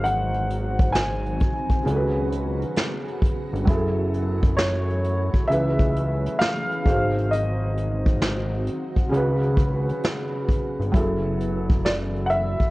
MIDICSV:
0, 0, Header, 1, 6, 480
1, 0, Start_track
1, 0, Key_signature, 3, "minor"
1, 0, Tempo, 909091
1, 20, Time_signature, 4, 2, 24, 8
1, 6707, End_track
2, 0, Start_track
2, 0, Title_t, "Upright piano"
2, 0, Program_c, 0, 0
2, 21, Note_on_c, 0, 78, 91
2, 489, Note_on_c, 0, 80, 93
2, 515, Note_off_c, 0, 78, 0
2, 1193, Note_off_c, 0, 80, 0
2, 2412, Note_on_c, 0, 73, 89
2, 2875, Note_off_c, 0, 73, 0
2, 2890, Note_on_c, 0, 76, 96
2, 3372, Note_on_c, 0, 77, 102
2, 3389, Note_off_c, 0, 76, 0
2, 3860, Note_on_c, 0, 75, 82
2, 3871, Note_off_c, 0, 77, 0
2, 4799, Note_off_c, 0, 75, 0
2, 6257, Note_on_c, 0, 74, 81
2, 6305, Note_off_c, 0, 74, 0
2, 6475, Note_on_c, 0, 78, 82
2, 6494, Note_on_c, 0, 76, 103
2, 6500, Note_off_c, 0, 78, 0
2, 6707, Note_off_c, 0, 76, 0
2, 6707, End_track
3, 0, Start_track
3, 0, Title_t, "Felt piano"
3, 0, Program_c, 1, 0
3, 0, Control_c, 1, 64, 127
3, 0, Note_on_c, 1, 56, 62
3, 0, Note_on_c, 1, 63, 56
3, 0, Note_on_c, 1, 66, 57
3, 0, Note_on_c, 1, 72, 71
3, 952, Note_off_c, 1, 56, 0
3, 959, Note_off_c, 1, 63, 0
3, 965, Note_off_c, 1, 66, 0
3, 966, Note_on_c, 1, 49, 65
3, 971, Note_off_c, 1, 72, 0
3, 977, Note_on_c, 1, 61, 59
3, 986, Control_c, 1, 64, 0
3, 988, Note_on_c, 1, 66, 57
3, 1003, Note_on_c, 1, 69, 54
3, 1037, Note_off_c, 1, 69, 0
3, 1037, Note_on_c, 1, 71, 68
3, 1085, Control_c, 1, 64, 127
3, 1913, Note_off_c, 1, 49, 0
3, 1919, Note_off_c, 1, 61, 0
3, 1925, Note_off_c, 1, 66, 0
3, 1927, Note_on_c, 1, 54, 76
3, 1942, Note_on_c, 1, 64, 72
3, 1947, Control_c, 1, 64, 0
3, 1950, Note_off_c, 1, 71, 0
3, 1954, Note_on_c, 1, 68, 69
3, 1966, Note_on_c, 1, 69, 83
3, 2028, Control_c, 1, 64, 127
3, 2874, Note_off_c, 1, 54, 0
3, 2881, Note_off_c, 1, 64, 0
3, 2888, Note_off_c, 1, 68, 0
3, 2894, Note_off_c, 1, 69, 0
3, 2895, Note_on_c, 1, 49, 66
3, 2900, Note_on_c, 1, 61, 63
3, 2907, Control_c, 1, 64, 0
3, 2910, Note_on_c, 1, 52, 64
3, 2915, Note_on_c, 1, 71, 74
3, 2984, Control_c, 1, 64, 127
3, 3607, Note_on_c, 1, 56, 65
3, 3617, Note_off_c, 1, 49, 0
3, 3617, Note_on_c, 1, 63, 56
3, 3620, Note_off_c, 1, 61, 0
3, 3625, Note_off_c, 1, 52, 0
3, 3626, Control_c, 1, 64, 0
3, 3627, Note_off_c, 1, 71, 0
3, 3631, Note_on_c, 1, 66, 58
3, 3643, Note_on_c, 1, 72, 69
3, 3734, Control_c, 1, 64, 127
3, 4792, Note_off_c, 1, 56, 0
3, 4798, Note_off_c, 1, 63, 0
3, 4802, Note_on_c, 1, 49, 79
3, 4804, Note_off_c, 1, 66, 0
3, 4810, Note_off_c, 1, 72, 0
3, 4812, Note_on_c, 1, 61, 65
3, 4826, Control_c, 1, 64, 0
3, 4829, Note_on_c, 1, 66, 66
3, 4840, Note_on_c, 1, 71, 93
3, 4932, Control_c, 1, 64, 127
3, 5751, Note_off_c, 1, 49, 0
3, 5757, Note_off_c, 1, 61, 0
3, 5764, Note_on_c, 1, 54, 77
3, 5765, Note_off_c, 1, 66, 0
3, 5771, Note_off_c, 1, 71, 0
3, 5774, Note_on_c, 1, 64, 70
3, 5786, Control_c, 1, 64, 0
3, 5789, Note_on_c, 1, 68, 67
3, 5801, Note_on_c, 1, 69, 83
3, 5883, Control_c, 1, 64, 127
3, 6707, Note_off_c, 1, 54, 0
3, 6707, Note_off_c, 1, 64, 0
3, 6707, Note_off_c, 1, 68, 0
3, 6707, Note_off_c, 1, 69, 0
3, 6707, End_track
4, 0, Start_track
4, 0, Title_t, "Ambient pad"
4, 0, Program_c, 2, 92
4, 0, Note_on_c, 2, 51, 79
4, 0, Note_on_c, 2, 54, 75
4, 0, Note_on_c, 2, 60, 80
4, 0, Note_on_c, 2, 66, 89
4, 968, Note_off_c, 2, 51, 0
4, 968, Note_off_c, 2, 60, 0
4, 983, Note_on_c, 2, 59, 78
4, 985, Note_on_c, 2, 49, 85
4, 1932, Note_off_c, 2, 59, 0
4, 1933, Note_off_c, 2, 49, 0
4, 1933, Note_on_c, 2, 52, 80
4, 1934, Note_on_c, 2, 57, 70
4, 2878, Note_off_c, 2, 66, 0
4, 2887, Note_off_c, 2, 52, 0
4, 2887, Note_off_c, 2, 57, 0
4, 2895, Note_on_c, 2, 59, 79
4, 2898, Note_on_c, 2, 52, 92
4, 2899, Note_on_c, 2, 49, 78
4, 3610, Note_off_c, 2, 59, 0
4, 3612, Note_off_c, 2, 49, 0
4, 3612, Note_off_c, 2, 52, 0
4, 3620, Note_on_c, 2, 66, 97
4, 3623, Note_on_c, 2, 60, 74
4, 3624, Note_on_c, 2, 51, 80
4, 4809, Note_off_c, 2, 60, 0
4, 4810, Note_off_c, 2, 51, 0
4, 4820, Note_on_c, 2, 59, 75
4, 4823, Note_on_c, 2, 49, 91
4, 5758, Note_off_c, 2, 54, 0
4, 5759, Note_off_c, 2, 66, 0
4, 5771, Note_off_c, 2, 59, 0
4, 5772, Note_off_c, 2, 49, 0
4, 5774, Note_on_c, 2, 52, 77
4, 5774, Note_on_c, 2, 57, 60
4, 5775, Note_on_c, 2, 54, 60
4, 5776, Note_on_c, 2, 66, 74
4, 6707, Note_off_c, 2, 52, 0
4, 6707, Note_off_c, 2, 54, 0
4, 6707, Note_off_c, 2, 57, 0
4, 6707, Note_off_c, 2, 66, 0
4, 6707, End_track
5, 0, Start_track
5, 0, Title_t, "Analog synth bass"
5, 0, Program_c, 3, 38
5, 0, Note_on_c, 3, 32, 109
5, 755, Note_off_c, 3, 32, 0
5, 983, Note_on_c, 3, 37, 104
5, 1400, Note_off_c, 3, 37, 0
5, 1863, Note_on_c, 3, 31, 90
5, 1932, Note_off_c, 3, 31, 0
5, 1940, Note_on_c, 3, 30, 111
5, 2797, Note_off_c, 3, 30, 0
5, 2902, Note_on_c, 3, 37, 107
5, 3319, Note_off_c, 3, 37, 0
5, 3621, Note_on_c, 3, 32, 95
5, 4595, Note_off_c, 3, 32, 0
5, 4819, Note_on_c, 3, 37, 109
5, 5238, Note_off_c, 3, 37, 0
5, 5700, Note_on_c, 3, 31, 88
5, 5771, Note_off_c, 3, 31, 0
5, 5778, Note_on_c, 3, 30, 93
5, 6635, Note_off_c, 3, 30, 0
5, 6707, End_track
6, 0, Start_track
6, 0, Title_t, "Drums"
6, 28, Note_on_c, 9, 42, 82
6, 80, Note_off_c, 9, 42, 0
6, 181, Note_on_c, 9, 42, 35
6, 233, Note_off_c, 9, 42, 0
6, 265, Note_on_c, 9, 42, 60
6, 318, Note_off_c, 9, 42, 0
6, 420, Note_on_c, 9, 36, 96
6, 429, Note_on_c, 9, 42, 45
6, 473, Note_off_c, 9, 36, 0
6, 481, Note_off_c, 9, 42, 0
6, 503, Note_on_c, 9, 38, 117
6, 510, Note_on_c, 9, 42, 72
6, 556, Note_off_c, 9, 38, 0
6, 563, Note_off_c, 9, 42, 0
6, 664, Note_on_c, 9, 42, 34
6, 717, Note_off_c, 9, 42, 0
6, 739, Note_on_c, 9, 42, 52
6, 745, Note_on_c, 9, 36, 85
6, 792, Note_off_c, 9, 42, 0
6, 798, Note_off_c, 9, 36, 0
6, 896, Note_on_c, 9, 36, 82
6, 898, Note_on_c, 9, 42, 51
6, 949, Note_off_c, 9, 36, 0
6, 951, Note_off_c, 9, 42, 0
6, 988, Note_on_c, 9, 42, 79
6, 1041, Note_off_c, 9, 42, 0
6, 1226, Note_on_c, 9, 42, 68
6, 1278, Note_off_c, 9, 42, 0
6, 1382, Note_on_c, 9, 42, 52
6, 1435, Note_off_c, 9, 42, 0
6, 1457, Note_on_c, 9, 42, 70
6, 1463, Note_on_c, 9, 38, 105
6, 1510, Note_off_c, 9, 42, 0
6, 1516, Note_off_c, 9, 38, 0
6, 1625, Note_on_c, 9, 42, 33
6, 1678, Note_off_c, 9, 42, 0
6, 1698, Note_on_c, 9, 36, 87
6, 1714, Note_on_c, 9, 42, 62
6, 1751, Note_off_c, 9, 36, 0
6, 1767, Note_off_c, 9, 42, 0
6, 1875, Note_on_c, 9, 42, 44
6, 1928, Note_off_c, 9, 42, 0
6, 1939, Note_on_c, 9, 36, 120
6, 1945, Note_on_c, 9, 42, 86
6, 1992, Note_off_c, 9, 36, 0
6, 1998, Note_off_c, 9, 42, 0
6, 2184, Note_on_c, 9, 42, 59
6, 2237, Note_off_c, 9, 42, 0
6, 2339, Note_on_c, 9, 36, 95
6, 2347, Note_on_c, 9, 42, 44
6, 2391, Note_off_c, 9, 36, 0
6, 2400, Note_off_c, 9, 42, 0
6, 2421, Note_on_c, 9, 38, 119
6, 2428, Note_on_c, 9, 42, 74
6, 2474, Note_off_c, 9, 38, 0
6, 2481, Note_off_c, 9, 42, 0
6, 2584, Note_on_c, 9, 42, 35
6, 2637, Note_off_c, 9, 42, 0
6, 2661, Note_on_c, 9, 42, 55
6, 2714, Note_off_c, 9, 42, 0
6, 2817, Note_on_c, 9, 36, 85
6, 2820, Note_on_c, 9, 42, 50
6, 2870, Note_off_c, 9, 36, 0
6, 2873, Note_off_c, 9, 42, 0
6, 2910, Note_on_c, 9, 42, 76
6, 2963, Note_off_c, 9, 42, 0
6, 3058, Note_on_c, 9, 36, 90
6, 3060, Note_on_c, 9, 42, 38
6, 3111, Note_off_c, 9, 36, 0
6, 3113, Note_off_c, 9, 42, 0
6, 3148, Note_on_c, 9, 42, 64
6, 3201, Note_off_c, 9, 42, 0
6, 3304, Note_on_c, 9, 42, 54
6, 3357, Note_off_c, 9, 42, 0
6, 3379, Note_on_c, 9, 42, 72
6, 3385, Note_on_c, 9, 38, 103
6, 3432, Note_off_c, 9, 42, 0
6, 3438, Note_off_c, 9, 38, 0
6, 3546, Note_on_c, 9, 42, 33
6, 3599, Note_off_c, 9, 42, 0
6, 3621, Note_on_c, 9, 36, 97
6, 3637, Note_on_c, 9, 42, 65
6, 3674, Note_off_c, 9, 36, 0
6, 3690, Note_off_c, 9, 42, 0
6, 3793, Note_on_c, 9, 42, 41
6, 3846, Note_off_c, 9, 42, 0
6, 3869, Note_on_c, 9, 42, 81
6, 3922, Note_off_c, 9, 42, 0
6, 4106, Note_on_c, 9, 42, 56
6, 4158, Note_off_c, 9, 42, 0
6, 4258, Note_on_c, 9, 36, 91
6, 4267, Note_on_c, 9, 42, 44
6, 4311, Note_off_c, 9, 36, 0
6, 4319, Note_off_c, 9, 42, 0
6, 4340, Note_on_c, 9, 38, 109
6, 4347, Note_on_c, 9, 42, 75
6, 4393, Note_off_c, 9, 38, 0
6, 4400, Note_off_c, 9, 42, 0
6, 4577, Note_on_c, 9, 42, 56
6, 4630, Note_off_c, 9, 42, 0
6, 4734, Note_on_c, 9, 36, 76
6, 4736, Note_on_c, 9, 42, 47
6, 4787, Note_off_c, 9, 36, 0
6, 4789, Note_off_c, 9, 42, 0
6, 4825, Note_on_c, 9, 42, 76
6, 4878, Note_off_c, 9, 42, 0
6, 4978, Note_on_c, 9, 42, 37
6, 5031, Note_off_c, 9, 42, 0
6, 5053, Note_on_c, 9, 36, 90
6, 5064, Note_on_c, 9, 42, 67
6, 5106, Note_off_c, 9, 36, 0
6, 5117, Note_off_c, 9, 42, 0
6, 5221, Note_on_c, 9, 42, 51
6, 5274, Note_off_c, 9, 42, 0
6, 5297, Note_on_c, 9, 42, 74
6, 5303, Note_on_c, 9, 38, 108
6, 5350, Note_off_c, 9, 42, 0
6, 5356, Note_off_c, 9, 38, 0
6, 5536, Note_on_c, 9, 36, 88
6, 5553, Note_on_c, 9, 42, 60
6, 5589, Note_off_c, 9, 36, 0
6, 5606, Note_off_c, 9, 42, 0
6, 5710, Note_on_c, 9, 42, 48
6, 5763, Note_off_c, 9, 42, 0
6, 5776, Note_on_c, 9, 36, 103
6, 5782, Note_on_c, 9, 42, 79
6, 5829, Note_off_c, 9, 36, 0
6, 5834, Note_off_c, 9, 42, 0
6, 6022, Note_on_c, 9, 42, 60
6, 6075, Note_off_c, 9, 42, 0
6, 6176, Note_on_c, 9, 36, 99
6, 6186, Note_on_c, 9, 42, 44
6, 6229, Note_off_c, 9, 36, 0
6, 6238, Note_off_c, 9, 42, 0
6, 6260, Note_on_c, 9, 38, 103
6, 6267, Note_on_c, 9, 42, 76
6, 6313, Note_off_c, 9, 38, 0
6, 6320, Note_off_c, 9, 42, 0
6, 6421, Note_on_c, 9, 42, 34
6, 6474, Note_off_c, 9, 42, 0
6, 6496, Note_on_c, 9, 42, 59
6, 6548, Note_off_c, 9, 42, 0
6, 6653, Note_on_c, 9, 36, 73
6, 6657, Note_on_c, 9, 42, 47
6, 6706, Note_off_c, 9, 36, 0
6, 6707, Note_off_c, 9, 42, 0
6, 6707, End_track
0, 0, End_of_file